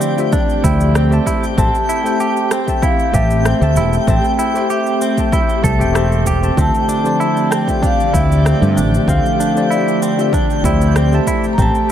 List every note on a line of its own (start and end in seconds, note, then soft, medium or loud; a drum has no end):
0.00 0.13 D3 medium
0.00 1.23 D3 medium
0.00 0.14 F3 medium
0.00 1.23 F3 medium
0.00 0.14 A3 medium
0.00 11.92 A3 medium
0.00 11.23 C4 medium
0.00 0.19 C4 medium
0.00 0.14 G4 medium
0.00 6.54 G4 medium
0.00 11.92 G4 medium
0.00 0.15 C5 medium
0.00 0.15 D5 loud
0.00 1.23 D5 medium
0.00 11.92 G5 medium
0.00 cabasa medium
0.16 0.32 D3 medium
0.16 0.32 A3 medium
0.16 0.33 F4 medium
0.16 0.33 G4 medium
0.16 0.33 C5 medium
0.16 0.34 E5 medium
0.16 cabasa soft
0.33 0.63 D4 medium
0.33 kick loud
0.33 cabasa soft
0.50 cabasa soft
0.62 1.18 D2 loud
0.62 1.07 D3 medium
0.62 1.08 F3 medium
0.62 1.08 A3 medium
0.62 0.94 E4 medium
0.62 1.08 G4 medium
0.62 1.09 C5 medium
0.62 1.09 G5 medium
0.62 kick loud
0.62 cabasa medium
0.80 cabasa soft
0.95 1.13 C4 medium
0.95 cross-stick medium
0.95 cabasa soft
1.10 1.54 A3 medium
1.10 1.54 G4 medium
1.10 1.54 C5 medium
1.10 1.55 E5 medium
1.10 1.55 A5 medium
1.10 cabasa soft
1.26 1.44 E4 medium
1.26 kick medium
1.26 cabasa medium
1.44 cabasa soft
1.56 1.69 A1 loud
1.56 2.01 A3 medium
1.56 1.76 C4 medium
1.56 2.01 G4 medium
1.56 2.02 C5 medium
1.56 2.02 E5 medium
1.56 2.48 A5 loud
1.56 2.03 A5 medium
1.56 kick loud
1.56 cabasa soft
1.75 cabasa soft
1.89 2.17 E4 medium
1.89 cabasa medium
2.04 2.63 A3 medium
2.04 2.64 G4 medium
2.04 2.64 C5 medium
2.04 2.65 E5 medium
2.04 2.65 G5 medium
2.04 cabasa soft
2.20 2.49 G4 loud
2.20 cabasa soft
2.37 cabasa soft
2.51 2.70 C4 loud
2.51 2.84 G5 medium
2.51 cross-stick medium
2.51 cabasa medium
2.66 2.82 A3 medium
2.66 2.82 G4 medium
2.66 2.83 C5 medium
2.66 2.83 E5 medium
2.66 2.84 A5 medium
2.66 kick medium
2.66 cabasa soft
2.82 3.13 E4 medium
2.82 3.16 F5 medium
2.82 kick loud
2.82 cabasa soft
2.99 cabasa soft
3.12 3.52 A1 medium
3.12 3.57 A3 medium
3.12 3.57 G4 medium
3.12 3.44 G4 medium
3.12 3.58 C5 medium
3.12 4.11 E5 loud
3.12 3.58 E5 medium
3.12 3.59 A5 medium
3.12 kick loud
3.12 cabasa medium
3.30 cabasa soft
3.45 3.63 C4 medium
3.45 cross-stick medium
3.45 cabasa soft
3.60 3.77 D2 loud
3.60 4.04 A3 medium
3.60 4.04 G4 medium
3.60 4.04 C5 medium
3.60 4.05 E5 medium
3.60 4.05 A5 medium
3.60 cabasa soft
3.75 3.97 E1 loud
3.75 3.95 E4 medium
3.75 cabasa medium
3.93 cabasa soft
4.07 4.18 A1 loud
4.07 4.51 A3 medium
4.07 4.26 C4 medium
4.07 4.52 G4 medium
4.07 4.52 C5 medium
4.07 4.52 E5 medium
4.07 4.73 G5 loud
4.07 4.53 A5 medium
4.07 kick loud
4.07 cabasa soft
4.24 cabasa soft
4.39 4.67 E4 medium
4.39 cabasa medium
4.54 5.14 A3 medium
4.54 5.14 G4 medium
4.54 5.14 C5 medium
4.54 5.15 E5 medium
4.54 5.15 G5 medium
4.54 cabasa soft
4.70 4.99 G4 loud
4.70 6.23 E5 medium
4.70 cabasa soft
4.86 cabasa soft
5.01 5.19 C4 loud
5.01 cabasa medium
5.17 5.32 A3 medium
5.17 5.32 G4 medium
5.17 5.33 C5 medium
5.17 5.33 E5 medium
5.17 5.34 A5 medium
5.17 kick medium
5.17 cabasa soft
5.32 5.63 E4 medium
5.32 kick loud
5.32 cabasa soft
5.49 cabasa soft
5.62 5.81 C2 medium
5.62 5.76 A3 medium
5.62 5.76 G4 medium
5.62 5.94 A4 loud
5.62 5.77 C5 medium
5.62 5.77 E5 medium
5.62 5.78 A5 loud
5.62 kick loud
5.62 cabasa medium
5.78 6.49 E1 medium
5.78 5.91 A3 medium
5.78 5.92 G4 medium
5.78 5.92 C5 medium
5.78 5.93 E5 medium
5.78 5.94 G5 loud
5.78 cabasa soft
5.92 6.38 A3 medium
5.92 6.24 C4 medium
5.92 6.38 G4 medium
5.92 6.38 C5 medium
5.92 6.39 E5 medium
5.92 6.39 A5 loud
5.92 cross-stick medium
5.92 cabasa soft
6.12 cabasa soft
6.26 6.57 G4 medium
6.26 kick medium
6.26 cabasa medium
6.41 6.53 A3 medium
6.41 6.54 G4 medium
6.41 6.54 C5 medium
6.41 6.55 E5 medium
6.41 6.55 A5 medium
6.41 cabasa soft
6.56 6.69 D2 loud
6.56 7.01 D3 medium
6.56 11.23 D3 medium
6.56 11.23 F3 medium
6.56 7.01 A3 medium
6.56 6.76 C4 medium
6.56 7.01 F4 medium
6.56 7.02 G4 medium
6.56 11.92 G4 medium
6.56 7.02 C5 medium
6.56 11.23 D5 medium
6.56 7.02 E5 medium
6.56 kick loud
6.56 cabasa soft
6.61 7.56 A5 loud
6.75 cabasa soft
6.89 7.17 D4 medium
6.89 cabasa medium
7.03 7.63 D3 medium
7.03 7.64 F3 medium
7.03 7.63 A3 medium
7.03 7.64 G4 medium
7.03 7.65 C5 medium
7.03 7.65 D5 medium
7.03 cabasa soft
7.20 7.49 E4 loud
7.20 cabasa soft
7.37 cabasa soft
7.51 7.69 C4 loud
7.51 7.85 G5 loud
7.51 cross-stick medium
7.51 cabasa medium
7.66 7.82 D3 medium
7.66 7.83 A3 medium
7.66 7.83 F4 medium
7.66 7.83 G4 medium
7.66 7.84 C5 medium
7.66 7.84 E5 medium
7.66 kick medium
7.66 cabasa soft
7.82 8.13 D4 medium
7.82 8.17 F5 medium
7.82 kick loud
7.82 cabasa soft
8.00 cabasa soft
8.12 8.53 D2 medium
8.12 8.57 D3 medium
8.12 8.58 F3 medium
8.12 8.57 A3 medium
8.12 8.44 E4 medium
8.12 8.58 G4 medium
8.12 8.58 C5 medium
8.12 9.11 E5 medium
8.12 8.59 G5 medium
8.12 kick loud
8.12 cabasa medium
8.32 cabasa soft
8.45 8.63 C4 medium
8.45 cross-stick medium
8.45 cabasa soft
8.60 8.78 G2 loud
8.60 9.04 D3 medium
8.60 9.04 F3 medium
8.60 9.04 A3 medium
8.60 9.05 G4 medium
8.60 9.05 C5 medium
8.60 cabasa soft
8.77 8.98 A1 loud
8.77 8.94 D4 medium
8.77 cabasa medium
8.94 cabasa soft
9.06 9.18 D2 loud
9.06 9.51 D3 medium
9.06 9.52 F3 medium
9.06 9.51 A3 medium
9.06 9.26 C4 medium
9.06 9.52 G4 medium
9.06 9.53 C5 medium
9.06 9.73 F5 loud
9.06 9.53 F5 medium
9.06 kick loud
9.06 cabasa soft
9.26 cabasa soft
9.40 9.68 D4 medium
9.40 cabasa medium
9.55 10.14 D3 medium
9.55 10.15 F3 medium
9.55 10.14 A3 medium
9.55 10.15 G4 medium
9.55 10.15 C5 medium
9.55 10.16 D5 loud
9.55 cabasa soft
9.71 9.99 E4 medium
9.71 11.23 D5 medium
9.71 cabasa soft
9.88 cabasa soft
10.02 10.20 C4 loud
10.02 cabasa medium
10.17 10.32 D3 medium
10.17 10.33 A3 medium
10.17 10.33 F4 medium
10.17 10.33 G4 medium
10.17 10.34 C5 medium
10.17 10.34 E5 medium
10.17 cabasa soft
10.33 10.63 D4 medium
10.33 kick loud
10.33 cabasa soft
10.50 cabasa soft
10.63 11.18 D2 loud
10.63 11.07 D3 medium
10.63 11.08 F3 medium
10.63 11.08 A3 medium
10.63 10.95 E4 medium
10.63 11.08 G4 medium
10.63 11.09 C5 medium
10.63 11.09 G5 medium
10.63 kick loud
10.63 cabasa medium
10.81 cabasa soft
10.96 11.14 C4 medium
10.96 cross-stick medium
10.96 cabasa soft
11.11 11.54 A3 medium
11.11 11.55 G4 medium
11.11 11.55 C5 medium
11.11 11.56 E5 medium
11.11 11.56 A5 loud
11.11 cabasa soft
11.27 11.92 C4 medium
11.27 11.45 E4 medium
11.27 kick medium
11.27 cabasa medium
11.44 cabasa soft
11.53 11.59 A#5 medium
11.58 11.69 A1 loud
11.58 11.92 A3 medium
11.58 11.76 C4 medium
11.58 11.92 G4 medium
11.58 11.92 C5 medium
11.58 11.92 E5 medium
11.58 11.92 A5 medium
11.58 kick loud
11.58 cabasa soft
11.62 11.92 A5 loud
11.75 cabasa soft